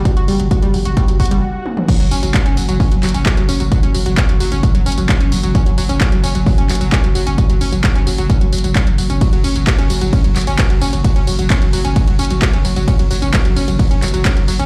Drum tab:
CC |--------------------------------|x-------------------------------|--------------------------------|--------------------------------|
RD |--------------------------------|--------------------------------|--------------------------------|--------------------------------|
HH |x-x-o-x-x-x-o-x-x-x-oxx---------|x-x-o-x-x-x-o-x-o-x-oxx-x-x-o-x-|x-x-o-x-x-x-o-x-x-x-oxx-x-x-o-x-|x-x-o-x-x-x-o-x-o-x-oxx-x-x-o-x-|
TB |--------------------------------|x---x-x-----x-x-x---x-x-x---x-x-|x---x-x-x---x-x-x---x-x-x---x-x-|x---x-x-----x-x-x---x-x-x---x-x-|
CP |--------------------------------|--------x-----------x---x-------|--------x---------------x-------|--------x-----------x---x-------|
T1 |----------------------------o---|--------------------------------|--------------------------------|--------------------------------|
T2 |------------------------------o-|--------------------------------|--------------------------------|--------------------------------|
BD |o-------o-------o---o-----------|o-------o-------o-------o-------|o-------o-------o-------o-------|o-------o-------o-------o-------|

CC |--------------------------------|--------------------------------|--------------------------------|--------------------------------|
RD |--------------------------------|x-------x-------x-------x-------|x-------x-------x-------x-------|x-------x-------x-------x-------|
HH |x-x-o-x-x-x-o-x-x-x-oxx-x-x-o-x-|x-x-o-x-x-x-o-x-o-x-oxx-x-x-o-x-|x-x-o-x-x-x-o-x-x-x-oxx-x-x-o-x-|x-x-o-x-x-x-o-x-o-x-oxx-x-x-o-x-|
TB |x---x-x-x---x-x-x---x-x-x---x-x-|x---x-x-----x-x-x---x-x-----x-x-|x---x-x-x---x-x-x---x-x-x---x-x-|x---x-x-----x-x-x---x-x-----x-x-|
CP |--------x---------------x-------|--------x-----------x---x-------|--------x---------------x-------|--------x-----------x---x-------|
T1 |--------------------------------|--------------------------------|--------------------------------|--------------------------------|
T2 |--------------------------------|--------------------------------|--------------------------------|--------------------------------|
BD |o-------o-------o-------o-------|o-------o-------o-------o-------|o-------o-------o-------o-------|o-------o-------o-------o-------|